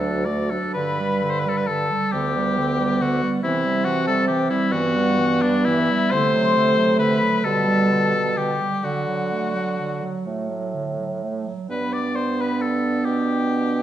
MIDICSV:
0, 0, Header, 1, 6, 480
1, 0, Start_track
1, 0, Key_signature, 1, "major"
1, 0, Tempo, 1001669
1, 359, Time_signature, 6, 3, 24, 8
1, 359, Tempo, 934579
1, 839, Tempo, 867052
1, 2279, Tempo, 923077
1, 3239, Tempo, 887574
1, 4199, Tempo, 949367
1, 6119, Tempo, 900901
1, 7249, End_track
2, 0, Start_track
2, 0, Title_t, "Flute"
2, 0, Program_c, 0, 73
2, 359, Note_on_c, 0, 83, 78
2, 830, Note_on_c, 0, 81, 73
2, 837, Note_off_c, 0, 83, 0
2, 1081, Note_on_c, 0, 79, 75
2, 1089, Note_off_c, 0, 81, 0
2, 1575, Note_on_c, 0, 78, 76
2, 1583, Note_off_c, 0, 79, 0
2, 1808, Note_off_c, 0, 78, 0
2, 1811, Note_on_c, 0, 76, 74
2, 2033, Note_on_c, 0, 78, 83
2, 2041, Note_off_c, 0, 76, 0
2, 2155, Note_on_c, 0, 81, 74
2, 2163, Note_off_c, 0, 78, 0
2, 2272, Note_on_c, 0, 79, 84
2, 2281, Note_off_c, 0, 81, 0
2, 2391, Note_on_c, 0, 76, 73
2, 2398, Note_off_c, 0, 79, 0
2, 2501, Note_off_c, 0, 76, 0
2, 2504, Note_on_c, 0, 78, 88
2, 2862, Note_off_c, 0, 78, 0
2, 2875, Note_on_c, 0, 74, 83
2, 2995, Note_on_c, 0, 76, 86
2, 3003, Note_off_c, 0, 74, 0
2, 3241, Note_on_c, 0, 84, 105
2, 3249, Note_off_c, 0, 76, 0
2, 3575, Note_off_c, 0, 84, 0
2, 3712, Note_on_c, 0, 83, 80
2, 3955, Note_on_c, 0, 81, 89
2, 3963, Note_off_c, 0, 83, 0
2, 4438, Note_on_c, 0, 79, 68
2, 4446, Note_off_c, 0, 81, 0
2, 4664, Note_off_c, 0, 79, 0
2, 4667, Note_on_c, 0, 78, 68
2, 5378, Note_off_c, 0, 78, 0
2, 6118, Note_on_c, 0, 83, 68
2, 6243, Note_on_c, 0, 86, 61
2, 6251, Note_off_c, 0, 83, 0
2, 6361, Note_on_c, 0, 84, 66
2, 6369, Note_off_c, 0, 86, 0
2, 6479, Note_off_c, 0, 84, 0
2, 6482, Note_on_c, 0, 83, 51
2, 6599, Note_on_c, 0, 81, 58
2, 6607, Note_off_c, 0, 83, 0
2, 6834, Note_off_c, 0, 81, 0
2, 6837, Note_on_c, 0, 79, 63
2, 7249, Note_off_c, 0, 79, 0
2, 7249, End_track
3, 0, Start_track
3, 0, Title_t, "Oboe"
3, 0, Program_c, 1, 68
3, 0, Note_on_c, 1, 69, 64
3, 120, Note_on_c, 1, 74, 69
3, 127, Note_off_c, 1, 69, 0
3, 241, Note_on_c, 1, 69, 68
3, 248, Note_off_c, 1, 74, 0
3, 350, Note_off_c, 1, 69, 0
3, 353, Note_on_c, 1, 71, 84
3, 644, Note_on_c, 1, 72, 81
3, 651, Note_off_c, 1, 71, 0
3, 692, Note_on_c, 1, 71, 75
3, 700, Note_off_c, 1, 72, 0
3, 737, Note_on_c, 1, 69, 77
3, 745, Note_off_c, 1, 71, 0
3, 779, Note_on_c, 1, 71, 82
3, 787, Note_off_c, 1, 69, 0
3, 830, Note_on_c, 1, 69, 94
3, 837, Note_off_c, 1, 71, 0
3, 1080, Note_on_c, 1, 67, 91
3, 1089, Note_off_c, 1, 69, 0
3, 1576, Note_on_c, 1, 66, 86
3, 1584, Note_off_c, 1, 67, 0
3, 1740, Note_off_c, 1, 66, 0
3, 1809, Note_on_c, 1, 64, 90
3, 2039, Note_on_c, 1, 66, 99
3, 2047, Note_off_c, 1, 64, 0
3, 2158, Note_off_c, 1, 66, 0
3, 2161, Note_on_c, 1, 69, 99
3, 2272, Note_off_c, 1, 69, 0
3, 2275, Note_on_c, 1, 67, 87
3, 2387, Note_off_c, 1, 67, 0
3, 2392, Note_on_c, 1, 64, 91
3, 2506, Note_on_c, 1, 66, 108
3, 2514, Note_off_c, 1, 64, 0
3, 2868, Note_on_c, 1, 62, 90
3, 2876, Note_off_c, 1, 66, 0
3, 2987, Note_on_c, 1, 64, 101
3, 2995, Note_off_c, 1, 62, 0
3, 3227, Note_on_c, 1, 72, 110
3, 3235, Note_off_c, 1, 64, 0
3, 3701, Note_off_c, 1, 72, 0
3, 3704, Note_on_c, 1, 71, 99
3, 3946, Note_on_c, 1, 69, 101
3, 3955, Note_off_c, 1, 71, 0
3, 4438, Note_on_c, 1, 67, 85
3, 4445, Note_off_c, 1, 69, 0
3, 4671, Note_on_c, 1, 66, 71
3, 4679, Note_off_c, 1, 67, 0
3, 5395, Note_off_c, 1, 66, 0
3, 6118, Note_on_c, 1, 71, 69
3, 6240, Note_on_c, 1, 74, 73
3, 6248, Note_off_c, 1, 71, 0
3, 6359, Note_on_c, 1, 72, 73
3, 6367, Note_off_c, 1, 74, 0
3, 6497, Note_on_c, 1, 71, 77
3, 6505, Note_off_c, 1, 72, 0
3, 6603, Note_on_c, 1, 69, 69
3, 6611, Note_off_c, 1, 71, 0
3, 6836, Note_on_c, 1, 67, 79
3, 6844, Note_off_c, 1, 69, 0
3, 7249, Note_off_c, 1, 67, 0
3, 7249, End_track
4, 0, Start_track
4, 0, Title_t, "French horn"
4, 0, Program_c, 2, 60
4, 0, Note_on_c, 2, 54, 70
4, 124, Note_on_c, 2, 57, 66
4, 131, Note_off_c, 2, 54, 0
4, 244, Note_on_c, 2, 54, 61
4, 251, Note_off_c, 2, 57, 0
4, 359, Note_off_c, 2, 54, 0
4, 1090, Note_on_c, 2, 59, 85
4, 1788, Note_off_c, 2, 59, 0
4, 1815, Note_on_c, 2, 60, 83
4, 2509, Note_on_c, 2, 59, 90
4, 2517, Note_off_c, 2, 60, 0
4, 3238, Note_off_c, 2, 59, 0
4, 3241, Note_on_c, 2, 57, 95
4, 3954, Note_on_c, 2, 55, 76
4, 3963, Note_off_c, 2, 57, 0
4, 4522, Note_off_c, 2, 55, 0
4, 4670, Note_on_c, 2, 54, 58
4, 5739, Note_off_c, 2, 54, 0
4, 6116, Note_on_c, 2, 62, 72
4, 7249, Note_off_c, 2, 62, 0
4, 7249, End_track
5, 0, Start_track
5, 0, Title_t, "Clarinet"
5, 0, Program_c, 3, 71
5, 2, Note_on_c, 3, 62, 66
5, 126, Note_on_c, 3, 66, 59
5, 133, Note_off_c, 3, 62, 0
5, 247, Note_on_c, 3, 62, 62
5, 254, Note_off_c, 3, 66, 0
5, 361, Note_off_c, 3, 62, 0
5, 364, Note_on_c, 3, 50, 64
5, 486, Note_on_c, 3, 55, 56
5, 493, Note_off_c, 3, 50, 0
5, 604, Note_on_c, 3, 50, 67
5, 612, Note_off_c, 3, 55, 0
5, 725, Note_on_c, 3, 55, 57
5, 733, Note_off_c, 3, 50, 0
5, 839, Note_on_c, 3, 50, 55
5, 847, Note_off_c, 3, 55, 0
5, 966, Note_on_c, 3, 55, 60
5, 975, Note_off_c, 3, 50, 0
5, 1093, Note_on_c, 3, 50, 61
5, 1102, Note_off_c, 3, 55, 0
5, 1214, Note_on_c, 3, 55, 65
5, 1222, Note_off_c, 3, 50, 0
5, 1337, Note_on_c, 3, 50, 63
5, 1345, Note_off_c, 3, 55, 0
5, 1453, Note_on_c, 3, 55, 62
5, 1462, Note_off_c, 3, 50, 0
5, 1575, Note_on_c, 3, 50, 62
5, 1583, Note_off_c, 3, 55, 0
5, 1693, Note_on_c, 3, 55, 63
5, 1701, Note_off_c, 3, 50, 0
5, 1810, Note_off_c, 3, 55, 0
5, 1812, Note_on_c, 3, 52, 67
5, 1929, Note_on_c, 3, 55, 64
5, 1937, Note_off_c, 3, 52, 0
5, 2043, Note_on_c, 3, 52, 68
5, 2051, Note_off_c, 3, 55, 0
5, 2165, Note_on_c, 3, 55, 62
5, 2174, Note_off_c, 3, 52, 0
5, 2282, Note_on_c, 3, 52, 66
5, 2290, Note_off_c, 3, 55, 0
5, 2395, Note_on_c, 3, 55, 71
5, 2402, Note_off_c, 3, 52, 0
5, 2511, Note_on_c, 3, 52, 73
5, 2519, Note_off_c, 3, 55, 0
5, 2628, Note_on_c, 3, 55, 73
5, 2636, Note_off_c, 3, 52, 0
5, 2748, Note_on_c, 3, 52, 73
5, 2756, Note_off_c, 3, 55, 0
5, 2875, Note_on_c, 3, 55, 70
5, 2882, Note_off_c, 3, 52, 0
5, 2999, Note_on_c, 3, 52, 72
5, 3007, Note_off_c, 3, 55, 0
5, 3121, Note_on_c, 3, 55, 66
5, 3129, Note_off_c, 3, 52, 0
5, 3238, Note_off_c, 3, 55, 0
5, 3241, Note_on_c, 3, 50, 81
5, 3359, Note_on_c, 3, 54, 70
5, 3368, Note_off_c, 3, 50, 0
5, 3473, Note_on_c, 3, 50, 68
5, 3481, Note_off_c, 3, 54, 0
5, 3590, Note_on_c, 3, 54, 62
5, 3598, Note_off_c, 3, 50, 0
5, 3709, Note_on_c, 3, 50, 69
5, 3717, Note_off_c, 3, 54, 0
5, 3830, Note_on_c, 3, 54, 61
5, 3838, Note_off_c, 3, 50, 0
5, 3945, Note_off_c, 3, 54, 0
5, 3948, Note_on_c, 3, 50, 64
5, 4074, Note_on_c, 3, 55, 65
5, 4082, Note_off_c, 3, 50, 0
5, 4202, Note_on_c, 3, 50, 61
5, 4209, Note_off_c, 3, 55, 0
5, 4320, Note_on_c, 3, 55, 52
5, 4327, Note_off_c, 3, 50, 0
5, 4436, Note_on_c, 3, 50, 51
5, 4443, Note_off_c, 3, 55, 0
5, 4554, Note_on_c, 3, 55, 51
5, 4562, Note_off_c, 3, 50, 0
5, 4672, Note_off_c, 3, 55, 0
5, 4674, Note_on_c, 3, 50, 55
5, 4790, Note_on_c, 3, 54, 48
5, 4797, Note_off_c, 3, 50, 0
5, 4912, Note_on_c, 3, 57, 47
5, 4920, Note_off_c, 3, 54, 0
5, 5027, Note_on_c, 3, 54, 42
5, 5035, Note_off_c, 3, 57, 0
5, 5153, Note_on_c, 3, 50, 41
5, 5161, Note_off_c, 3, 54, 0
5, 5268, Note_on_c, 3, 54, 47
5, 5276, Note_off_c, 3, 50, 0
5, 5390, Note_on_c, 3, 57, 43
5, 5398, Note_off_c, 3, 54, 0
5, 5510, Note_on_c, 3, 54, 48
5, 5518, Note_off_c, 3, 57, 0
5, 5634, Note_on_c, 3, 50, 43
5, 5642, Note_off_c, 3, 54, 0
5, 5755, Note_on_c, 3, 54, 41
5, 5763, Note_off_c, 3, 50, 0
5, 5880, Note_on_c, 3, 57, 41
5, 5888, Note_off_c, 3, 54, 0
5, 5998, Note_on_c, 3, 54, 44
5, 6005, Note_off_c, 3, 57, 0
5, 6111, Note_off_c, 3, 54, 0
5, 6114, Note_on_c, 3, 59, 59
5, 7249, Note_off_c, 3, 59, 0
5, 7249, End_track
6, 0, Start_track
6, 0, Title_t, "Bassoon"
6, 0, Program_c, 4, 70
6, 0, Note_on_c, 4, 38, 92
6, 275, Note_off_c, 4, 38, 0
6, 360, Note_on_c, 4, 43, 78
6, 964, Note_off_c, 4, 43, 0
6, 1087, Note_on_c, 4, 38, 71
6, 1690, Note_off_c, 4, 38, 0
6, 1807, Note_on_c, 4, 48, 80
6, 2390, Note_off_c, 4, 48, 0
6, 2501, Note_on_c, 4, 43, 90
6, 3116, Note_off_c, 4, 43, 0
6, 3234, Note_on_c, 4, 48, 80
6, 3828, Note_off_c, 4, 48, 0
6, 3949, Note_on_c, 4, 47, 76
6, 4550, Note_off_c, 4, 47, 0
6, 4668, Note_on_c, 4, 50, 61
6, 5273, Note_off_c, 4, 50, 0
6, 5391, Note_on_c, 4, 45, 57
6, 5999, Note_off_c, 4, 45, 0
6, 6115, Note_on_c, 4, 43, 57
6, 6838, Note_on_c, 4, 47, 53
6, 6846, Note_off_c, 4, 43, 0
6, 7249, Note_off_c, 4, 47, 0
6, 7249, End_track
0, 0, End_of_file